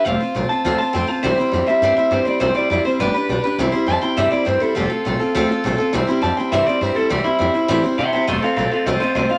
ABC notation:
X:1
M:4/4
L:1/8
Q:1/4=204
K:C
V:1 name="Clean electric guitar"
f3 a2 a g a | c3 e2 e c d | c d d c B3 z | z2 a g e d c A |
G F4 z3 | z2 a g e d c A | G E4 z [eg] [eg] | [_eg] [Af] [Af] [Af] [ce] [ce] [ce] f |]
V:2 name="Steel-string acoustic guitar"
[F,A,CFc] [CFc] [A,CFc] [CFc] [F,A,CFc] [CFc] [A,CFc] [CFc] | [C,E,G,CEc] [G,CEc] [G,CEc] [G,CEc] [C,E,G,CEc] [G,CEc] [G,CEc] [G,CEc] | [C,E,G,CEc] [G,CEc] [G,CEc] [G,CEc] [G,DGB] [DGB] [G,DGB] [DGB] | [C,E,G,CEc] [G,CEc] [G,CEc] [G,CEc] [C,E,G,CEc] [G,CEc] [G,CEc] [G,CEc] |
[F,A,CFA] [CFA] [A,CFA] [CFA] [F,A,CFA] [CFA] [A,CFA] [CFA] | [C,E,G,CEc] [G,CEc] [G,CEc] [G,CEc] [C,E,G,CEc] [G,CEc] [G,CEc] [G,CEc] | [C,E,G,CEc] [G,CEc] [G,CEc] [G,CEc] [C,E,G,CEc] [G,CEc] [G,CEc] [G,CEc] | [F,A,CFc] [CFc] [A,CFc] [CFc] [F,A,CFc] [CFc] [A,CFc] [CFc] |]
V:3 name="Upright bass" clef=bass
F,,, z _B,,, z D,, z F,, z | C,, z F,, z G,, z G,, z | C,, z F,, z G,,, z B,,, z | C,, z F,, z G,, z G,, z |
F,,, z _B,,, z D,, z B,,, z | C,, z F,, z G,, z G,, z | C,, z F,, z A,, z C, z | F,,, z _B,,, z C,, z C,, z |]